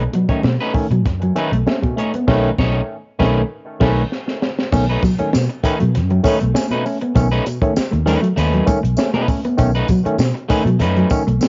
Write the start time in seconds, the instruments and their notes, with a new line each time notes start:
0.13 tine electric piano B2, clean electric guitar F#3, muted clean electric guitar stroke, closed hi-hat, muted conga
0.28 tine electric piano D#3 A3 C#4, clean electric guitar A3 C#4 D#4 C#5, muted fingered electric bass stroke, muted clean electric guitar stroke, kick, closed hi-hat
0.43 fingered electric bass B2, clean electric guitar A3, muted clean electric guitar stroke, snare, high conga
0.61 clean electric guitar A3 C#4 D#4 B4
0.74 tine electric piano D#3 A3 C#4, muted fingered electric bass stroke, muted clean electric guitar stroke, kick, open hi-hat
0.91 fingered electric bass B2, clean electric guitar F#3, muted clean electric guitar stroke, closed hi-hat
1.05 fingered electric bass F#2, muted clean electric guitar stroke, kick, snare, closed hi-hat, muted conga
1.22 clean electric guitar F#3, muted clean electric guitar stroke, closed hi-hat
1.36 tine electric piano D#3 A3 C#4, clean electric guitar A3 C#4 D#4 B4, muted clean electric guitar stroke, closed hi-hat, muted conga
1.52 fingered electric bass B1, clean electric guitar A3, muted clean electric guitar stroke, closed hi-hat
1.67 tine electric piano A3 C#4, clean electric guitar A3, muted clean electric guitar stroke, snare, high conga
1.83 tine electric piano B2, kick, closed hi-hat, high conga
1.96 tine electric piano A3 C#4, clean electric guitar A3 C#4 D#4 C#5, muted clean electric guitar stroke, closed hi-hat
2.14 clean electric guitar B3, muted clean electric guitar stroke, closed hi-hat, high conga
2.27 fingered electric bass B1, tine electric piano D#3 A3 C#4, clean electric guitar A3 C#4 D#4 B4, kick, snare, crash
2.59 fingered electric bass B1, clean electric guitar A3 C#4 D#4 C#5, kick, snare
3.19 fingered electric bass B1, tine electric piano D#3 A3 C#4, clean electric guitar A3 C#4 D#4 B4, kick, snare
3.80 fingered electric bass B1, tine electric piano D#3 A3 C#4, clean electric guitar A3 C#4 D#4 B4, kick, snare, crash
4.12 snare
4.28 snare
4.42 snare
4.59 snare
4.72 fingered electric bass B1, tine electric piano D#3 A3 C#4, clean electric guitar B3, muted clean electric guitar stroke, kick, crash, tambourine, muted conga
4.88 clean electric guitar A3 C#4 D#4 B4, closed hi-hat
5.02 tine electric piano B2, clean electric guitar F#3, kick, closed hi-hat, tambourine, muted conga
5.18 tine electric piano D#3 A3 C#4, muted clean electric guitar stroke, muted fingered electric bass stroke, closed hi-hat
5.33 fingered electric bass B2, clean electric guitar A3, snare, tambourine, high conga
5.49 muted clean electric guitar stroke, closed hi-hat
5.63 tine electric piano D#3 A3 C#4, clean electric guitar A3 C#4 D#4 B4, muted fingered electric bass stroke, muted clean electric guitar stroke, kick, closed hi-hat, tambourine
5.80 fingered electric bass B2, clean electric guitar F#3, muted clean electric guitar stroke, closed hi-hat
5.95 fingered electric bass F#2, muted clean electric guitar stroke, snare, closed hi-hat
6.10 clean electric guitar F#3, muted clean electric guitar stroke, closed hi-hat
6.23 tine electric piano D#3 A3 C#4, clean electric guitar A3 C#4 D#4 B4, kick, closed hi-hat, tambourine, muted conga
6.40 fingered electric bass B1, clean electric guitar A3, muted clean electric guitar stroke, closed hi-hat
6.54 tine electric piano A3 C#4, clean electric guitar A3, muted clean electric guitar stroke, snare, tambourine, high conga
6.71 tine electric piano B2, clean electric guitar A3 C#4 D#4 B4, closed hi-hat, high conga
6.85 tine electric piano A3 C#4, muted clean electric guitar stroke, open hi-hat, tambourine
7.01 clean electric guitar B3, muted clean electric guitar stroke, closed hi-hat
7.15 fingered electric bass B1, tine electric piano D#3 A3 C#4, clean electric guitar B3, muted clean electric guitar stroke, kick, closed hi-hat, tambourine, muted conga
7.32 clean electric guitar A3 C#4 D#4 B4, closed hi-hat
7.46 tine electric piano B2, muted clean electric guitar stroke, closed hi-hat, tambourine, muted conga
7.62 tine electric piano D#3 A3 C#4, clean electric guitar A3, muted fingered electric bass stroke, muted clean electric guitar stroke, kick, closed hi-hat
7.76 muted fingered electric bass stroke, snare, tambourine, high conga
7.91 fingered electric bass D#2, clean electric guitar A3, muted clean electric guitar stroke, closed hi-hat
8.05 tine electric piano D#3 A3 C#4, clean electric guitar A3 C#4 D#4 B4, muted clean electric guitar stroke, closed hi-hat, tambourine, low conga
8.22 clean electric guitar F#3, muted clean electric guitar stroke, closed hi-hat
8.36 fingered electric bass D#2, clean electric guitar A3 C#4 D#4 B4, muted clean electric guitar stroke, snare, closed hi-hat, tambourine, muted conga
8.53 clean electric guitar F#3, closed hi-hat
8.66 tine electric piano D#3 A3 C#4, clean electric guitar A3, muted clean electric guitar stroke, kick, closed hi-hat, tambourine, muted conga, low conga
8.83 fingered electric bass B1, muted clean electric guitar stroke, closed hi-hat
8.97 tine electric piano A3 C#4, muted clean electric guitar stroke, snare, tambourine, high conga
9.14 tine electric piano B2, clean electric guitar A3 C#4 D#4 B4, closed hi-hat, high conga
9.28 tine electric piano A3 C#4, muted clean electric guitar stroke, kick, open hi-hat, tambourine
9.45 clean electric guitar B3, muted clean electric guitar stroke, closed hi-hat
9.58 fingered electric bass B1, tine electric piano D#3 A3 C#4, clean electric guitar B3, muted clean electric guitar stroke, kick, closed hi-hat, tambourine, muted conga
9.75 clean electric guitar A3 C#4 D#4 B4, closed hi-hat
9.88 tine electric piano B2, clean electric guitar F#3, muted clean electric guitar stroke, kick, closed hi-hat, tambourine, muted conga
10.05 tine electric piano D#3 A3 C#4, muted clean electric guitar stroke, muted fingered electric bass stroke, closed hi-hat
10.18 fingered electric bass B2, clean electric guitar A3, snare, tambourine, high conga
10.34 muted clean electric guitar stroke, closed hi-hat
10.48 tine electric piano D#3 A3 C#4, clean electric guitar A3 C#4 D#4 B4, muted fingered electric bass stroke, muted clean electric guitar stroke, kick, closed hi-hat, tambourine
10.65 fingered electric bass B2, clean electric guitar F#3, muted clean electric guitar stroke, closed hi-hat
10.79 fingered electric bass F#2, clean electric guitar A3 C#4 D#4 B4, snare, closed hi-hat, tambourine, muted conga
10.97 clean electric guitar F#3, closed hi-hat
11.10 tine electric piano D#3 A3 C#4, kick, closed hi-hat, tambourine, muted conga
11.27 fingered electric bass B1, clean electric guitar A3, muted clean electric guitar stroke, closed hi-hat
11.41 tine electric piano B2, clean electric guitar A3, muted clean electric guitar stroke, snare, tambourine, high conga